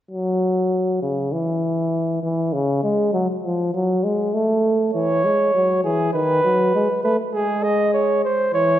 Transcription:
0.11 euphonium F#3
1.02 euphonium C#3
1.32 euphonium E3
2.23 euphonium E3
2.53 euphonium C#3
2.83 euphonium G#3
3.13 euphonium F#3
3.44 euphonium F3
3.74 euphonium F#3
4.04 euphonium G#3
4.34 euphonium A3
4.94 euphonium E3, flugelhorn C#5
5.25 euphonium G#3
5.54 euphonium F#3
5.84 euphonium E3, flugelhorn G#4
6.13 euphonium D#3, flugelhorn B4
6.44 euphonium F#3
6.75 euphonium G#3
7.03 euphonium A3, flugelhorn B4
7.33 euphonium G#3, flugelhorn G#4
7.63 flugelhorn D#5
7.94 flugelhorn C#5
8.24 flugelhorn C5
8.54 euphonium E3, flugelhorn C#5

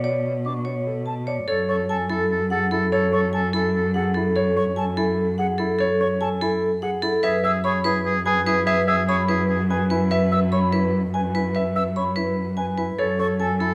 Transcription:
Already playing: cello B2
0.04 vibraphone C#5, grand piano D5
0.45 grand piano D4, vibraphone C#6, flute D6
0.65 vibraphone C#5
0.87 grand piano A4
1.06 vibraphone A5, flute A5
1.27 vibraphone C#5, grand piano D5
1.48 cello F#2, vibraphone A4, oboe A4, grand piano C#5
1.69 oboe A4, grand piano C#5, flute C#6
1.89 grand piano A4, oboe A4, vibraphone G#5, flute A5
2.10 grand piano E4, vibraphone A4, oboe A4
2.31 oboe A4
2.50 grand piano G#4, oboe A4, vibraphone F#5, flute F#5
2.71 grand piano E4, vibraphone A4, oboe A4
2.92 vibraphone A4, oboe A4, grand piano C#5
3.12 oboe A4, grand piano C#5, flute C#6
3.33 grand piano A4, oboe A4, vibraphone G#5, flute A5
3.53 grand piano E4, vibraphone A4, oboe A4
3.75 oboe A4
3.94 grand piano G#4, oboe A4, vibraphone F#5, flute F#5
4.14 grand piano E4, vibraphone A4
4.36 vibraphone A4, grand piano C#5
4.57 grand piano C#5, flute C#6
4.76 grand piano A4, vibraphone G#5, flute A5
4.97 grand piano E4, vibraphone A4
5.38 grand piano G#4, vibraphone F#5, flute F#5
5.58 grand piano E4, vibraphone A4
5.79 vibraphone A4, grand piano C#5
6.00 grand piano C#5, flute C#6
6.21 grand piano A4, vibraphone G#5, flute A5
6.41 grand piano E4, vibraphone A4
6.82 grand piano G#4, vibraphone F#5, flute F#5
7.02 grand piano E4, vibraphone A4
7.23 cello F#2, oboe G#4, vibraphone B4, grand piano E5
7.44 oboe G#4, grand piano E5, flute E6
7.64 oboe G#4, grand piano C#5, vibraphone B5, flute C#6
7.84 grand piano E4, oboe G#4, vibraphone B4
8.05 oboe G#4
8.26 oboe G#4, grand piano B4, vibraphone G#5, flute G#5
8.46 grand piano E4, oboe G#4, vibraphone B4
8.66 oboe G#4, vibraphone B4, grand piano E5
8.88 oboe G#4, grand piano E5, flute E6
9.07 oboe G#4, grand piano C#5, vibraphone B5, flute C#6
9.28 grand piano E4, oboe G#4, vibraphone B4
9.49 oboe G#4
9.70 oboe G#4, grand piano B4, flute G#5, vibraphone G#5
9.90 grand piano E4, vibraphone B4
10.11 vibraphone B4, grand piano E5
10.32 grand piano E5, flute E6
10.52 grand piano C#5, vibraphone B5, flute C#6
10.73 grand piano E4, vibraphone B4
11.14 grand piano B4, flute G#5, vibraphone G#5
11.35 grand piano E4, vibraphone B4
11.55 vibraphone B4, grand piano E5
11.76 grand piano E5, flute E6
11.96 grand piano C#5, vibraphone B5, flute C#6
12.16 grand piano E4, vibraphone B4
12.57 grand piano B4, vibraphone G#5, flute G#5
12.78 grand piano E4, vibraphone B4
12.98 cello F#2, vibraphone A4, oboe A4, grand piano C#5
13.19 oboe A4, grand piano C#5, flute C#6
13.39 oboe A4, grand piano A4, vibraphone G#5, flute A5
13.59 grand piano E4, oboe A4, vibraphone A4

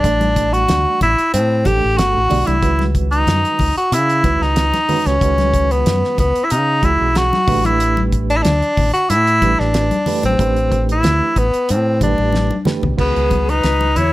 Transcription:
Already playing: tenor saxophone D4
0.04 fingered electric bass A1, reed electric piano E3 G3 A3 D4 D5, kick, closed hi-hat
0.21 closed hi-hat, high conga
0.36 kick, closed hi-hat
0.53 tenor saxophone F#4, closed hi-hat
0.68 fingered electric bass D2, snare, closed hi-hat, high conga, low conga
1.01 fingered electric bass A1, tenor saxophone E4, kick, closed hi-hat, low conga
1.18 muted fingered electric bass stroke, closed hi-hat
1.33 fingered electric bass A2, tenor saxophone C4, closed hi-hat
1.65 fingered electric bass A1, reed electric piano E3 A3 D4 G4 A4, tenor saxophone G4, kick, closed hi-hat, high conga
1.84 fingered electric bass A1
1.97 fingered electric bass G1, tenor saxophone F#4, snare, closed hi-hat
2.17 fingered electric bass A1
2.29 fingered electric bass B1, reed electric piano E3 A3 D4 G4 D5, open hi-hat, low conga
2.47 fingered electric bass C2, tenor saxophone E4, closed hi-hat, high conga
2.62 fingered electric bass C#2, reed electric piano D#3 G#3 C#4 F#4 B4, kick, closed hi-hat
2.79 snare, high conga
2.95 kick, closed hi-hat
3.11 tenor saxophone D#4, closed hi-hat
3.27 fingered electric bass F#2, snare, closed hi-hat, high conga, low conga
3.45 closed hi-hat
3.59 fingered electric bass C#2, kick, open hi-hat, low conga
3.76 tenor saxophone F#4, muted fingered electric bass stroke, closed hi-hat
3.92 fingered electric bass C#3, tenor saxophone E4, closed hi-hat
4.10 closed hi-hat
4.23 fingered electric bass C#2, reed electric piano D#3 G#3 C#4 F#4 B4, kick, closed hi-hat, high conga
4.41 fingered electric bass C#2, tenor saxophone D#4, snare
4.56 snare, closed hi-hat
4.74 snare, closed hi-hat, high conga
4.88 reed electric piano D#3 G#3 C#4 F#4 B4, open hi-hat, low conga
5.06 fingered electric bass C#2, tenor saxophone C#4, snare, closed hi-hat
5.20 fingered electric bass C#2, reed electric piano D#3 G#3 C#4 F#4 B4, kick, closed hi-hat
5.38 snare, closed hi-hat, high conga
5.54 kick, closed hi-hat
5.71 tenor saxophone B3, closed hi-hat
5.86 fingered electric bass F#2, snare, closed hi-hat, high conga, low conga
6.04 snare
6.18 fingered electric bass C#2, tenor saxophone B3, kick, closed hi-hat, low conga
6.36 muted fingered electric bass stroke, closed hi-hat
6.44 tenor saxophone E4
6.50 fingered electric bass C#3, tenor saxophone D#4, closed hi-hat
6.82 fingered electric bass C#2, reed electric piano E3 G#3 C#4 F#4 G#4, tenor saxophone E4, kick, closed hi-hat
7.01 fingered electric bass B1
7.15 tenor saxophone F#4, snare, closed hi-hat
7.33 snare, high conga
7.47 fingered electric bass A1, reed electric piano E3 A3 D4 G4 B4, kick, open hi-hat, low conga
7.65 tenor saxophone E4, closed hi-hat, high conga
7.80 closed hi-hat
7.97 high conga
8.12 kick, closed hi-hat
8.30 tenor saxophone D4, closed hi-hat
8.36 tenor saxophone E4
8.43 fingered electric bass D2, tenor saxophone D4, snare, closed hi-hat, high conga, low conga
8.62 closed hi-hat
8.77 fingered electric bass A1, kick, open hi-hat, low conga
8.93 tenor saxophone F#4, closed hi-hat
9.10 fingered electric bass A2, tenor saxophone E4, closed hi-hat
9.27 closed hi-hat
9.41 fingered electric bass A1, reed electric piano E3 A3 D4 G4 B4, kick, closed hi-hat, high conga
9.59 fingered electric bass A1, tenor saxophone D4, snare
9.74 snare, closed hi-hat
9.91 closed hi-hat, high conga
10.06 reed electric piano E3 A3 D4 G4 B4, open hi-hat, low conga
10.23 fingered electric bass A1, tenor saxophone C4, closed hi-hat, high conga
10.38 fingered electric bass A1, reed electric piano E3 A3 D4 G4 B4, kick, closed hi-hat
10.56 closed hi-hat
10.72 kick, closed hi-hat
10.89 tenor saxophone E4, closed hi-hat
11.03 fingered electric bass D2, snare, closed hi-hat, low conga
11.36 fingered electric bass A1, tenor saxophone B3, kick, closed hi-hat
11.54 muted fingered electric bass stroke, closed hi-hat
11.69 fingered electric bass A2, tenor saxophone C4, closed hi-hat
12.00 fingered electric bass A1, reed electric piano E3 A3 D4 G4 B4, tenor saxophone D4, kick, closed hi-hat, high conga, low conga
12.18 fingered electric bass A1, high conga
12.32 snare, high conga
12.51 high conga
12.65 reed electric piano E3 A3 D4 G4 B4, snare, low conga
12.83 fingered electric bass B1, floor tom, low conga
12.96 fingered electric bass C#2, reed electric piano D#3 G#3 C#4 F#4 B4, kick, crash
13.00 tenor saxophone B3, flute G#4
13.16 fingered electric bass C#2, closed hi-hat
13.31 kick, closed hi-hat, high conga, low conga
13.49 tenor saxophone D#4, flute B4, closed hi-hat
13.63 fingered electric bass C#2, snare, closed hi-hat
13.81 high conga
13.96 fingered electric bass E2, tenor saxophone E4, flute C#5, closed hi-hat, low conga

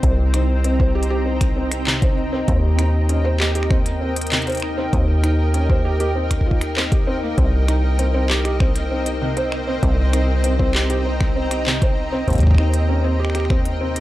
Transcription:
Already playing: ambient pad C4 C5 D#5 G5 A#5, synth texture D#4 D#5
0.03 acid bass C2, felt piano C4, kick, closed hi-hat
0.34 felt piano D#4, finger snap, closed hi-hat
0.64 felt piano C4, closed hi-hat
0.80 felt piano C5, kick
0.95 felt piano G4
1.03 closed hi-hat
1.10 felt piano G4
1.26 felt piano C4
1.41 finger snap, kick, closed hi-hat
1.56 felt piano C4
1.72 finger snap, closed hi-hat
1.87 felt piano C3, clap
2.02 felt piano C5, kick, closed hi-hat
2.33 felt piano C4
2.48 acid bass D#2, felt piano C4, ambient pad A#4, kick, closed hi-hat
2.79 felt piano D#4, finger snap, closed hi-hat
3.09 felt piano C#4, closed hi-hat
3.25 felt piano C5
3.40 felt piano G4, finger snap, clap
3.55 felt piano G4, closed hi-hat
3.63 finger snap
3.70 felt piano C4, finger snap, kick
3.86 closed hi-hat
4.01 felt piano C4
4.16 closed hi-hat
4.21 closed hi-hat
4.27 closed hi-hat
4.32 felt piano C3, clap, closed hi-hat
4.37 closed hi-hat
4.42 closed hi-hat
4.47 felt piano C5, closed hi-hat
4.50 closed hi-hat
4.52 closed hi-hat
4.55 closed hi-hat
4.57 closed hi-hat
4.60 finger snap, closed hi-hat
4.78 felt piano C4
4.93 acid bass D#2, felt piano C4, kick, closed hi-hat
5.24 felt piano D#4, finger snap, closed hi-hat
5.54 felt piano C#4, closed hi-hat
5.70 felt piano C5, kick
5.85 felt piano G4
6.00 felt piano G4, closed hi-hat
6.15 felt piano C4
6.31 finger snap, kick, closed hi-hat
6.41 kick
6.46 felt piano F4
6.51 kick
6.61 finger snap, closed hi-hat
6.77 felt piano C4, clap
6.92 felt piano G4, kick, closed hi-hat
7.07 felt piano C4
7.23 felt piano A#3
7.38 acid bass C2, felt piano C4, ambient pad C4, kick, closed hi-hat
7.67 felt piano D#4, ambient pad C5, finger snap, closed hi-hat
7.99 felt piano C4, closed hi-hat
8.14 felt piano C4
8.30 felt piano G4, finger snap, clap
8.45 felt piano G4, finger snap, closed hi-hat
8.60 felt piano C4, finger snap, kick
8.76 closed hi-hat
8.91 felt piano C4
9.06 closed hi-hat
9.16 ambient pad A#5
9.22 felt piano C3
9.37 felt piano C5, closed hi-hat
9.52 finger snap
9.67 felt piano C4
9.83 acid bass C2, felt piano C4, kick, closed hi-hat
10.13 felt piano D#4, finger snap, closed hi-hat
10.44 felt piano C4, closed hi-hat
10.59 felt piano C4, kick
10.75 felt piano G4, clap
10.90 felt piano G4, closed hi-hat
11.05 felt piano C4
11.21 finger snap, kick
11.36 felt piano C4
11.51 finger snap, closed hi-hat
11.66 felt piano C3, clap
11.82 felt piano C5, kick, closed hi-hat
12.12 felt piano C4
12.28 acid bass D#2, felt piano C4, ambient pad A#4, kick, closed hi-hat
12.30 kick, closed hi-hat
12.33 kick, closed hi-hat
12.35 closed hi-hat
12.38 kick, closed hi-hat
12.40 kick, closed hi-hat
12.47 kick
12.51 kick
12.55 felt piano D#4, finger snap, kick
12.74 closed hi-hat
12.89 felt piano C#4
13.04 felt piano C4
13.20 felt piano G4
13.25 finger snap
13.30 finger snap
13.35 felt piano G4, finger snap, closed hi-hat
13.40 finger snap
13.45 finger snap
13.50 felt piano C4, finger snap, kick
13.65 closed hi-hat
13.81 felt piano C4
13.96 closed hi-hat

